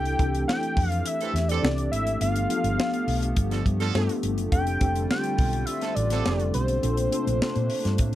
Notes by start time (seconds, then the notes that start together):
Already playing: C2 E3 A3 C4 D4 E4 G4 A4 G5
0.05 closed hi-hat
0.18 C2 D4 E4 G4 A4, kick, closed hi-hat
0.35 closed hi-hat
0.48 G5, snare
0.63 closed hi-hat
0.76 F2, kick, open hi-hat
0.90 F5, closed hi-hat
1.06 E5, closed hi-hat
1.21 E3 C4 A4, closed hi-hat
1.34 E2, snare, closed hi-hat
1.48 E3 C4 A4 D5, closed hi-hat
1.62 C2 D4 E4 G4 A4, snare
1.78 closed hi-hat
1.92 G#1 E5, closed hi-hat
2.07 closed hi-hat
2.20 G1 F3 B3 D4 F4 A4 F5, closed hi-hat
2.36 closed hi-hat
2.49 B3 D4 F4 G4, closed hi-hat
2.57 A4
2.64 G1, closed hi-hat
2.80 snare
2.94 closed hi-hat
3.07 B1, open hi-hat
3.23 closed hi-hat
3.37 G1, kick, closed hi-hat
3.50 F3 D4 A4, snare, closed hi-hat
3.66 G2, kick, closed hi-hat
3.80 F3 D4 A4, snare, closed hi-hat
3.94 G2 B3 D4 F4 A4, snare
4.09 closed hi-hat
4.23 G1, closed hi-hat
4.38 F#1, closed hi-hat
4.51 F1 D3 G3 C4 D4 F4 G4 A4 G5, kick, closed hi-hat
4.67 closed hi-hat
4.81 F1 C4 D4 G4 A4, kick, closed hi-hat
4.96 closed hi-hat
5.11 G5, snare
5.24 closed hi-hat
5.38 B1, kick, open hi-hat
5.53 closed hi-hat
5.66 E5, closed hi-hat
5.82 D3 C4 A4, snare, closed hi-hat
5.95 A1 D5, closed hi-hat
6.10 D3 C4 A4, snare, closed hi-hat
6.25 F1 C4 D4 G4 A4, snare
6.40 closed hi-hat
6.54 B1 C5, closed hi-hat
6.68 closed hi-hat
6.82 A#1 C3 A3 A#3 C4 D4 F4 A4, closed hi-hat
6.97 closed hi-hat
7.11 C4 D4 F4 A4, closed hi-hat
7.27 A#1, closed hi-hat
7.42 snare
7.55 A#2, closed hi-hat
7.70 open hi-hat
7.85 G2, snare, closed hi-hat
7.98 A2, kick, closed hi-hat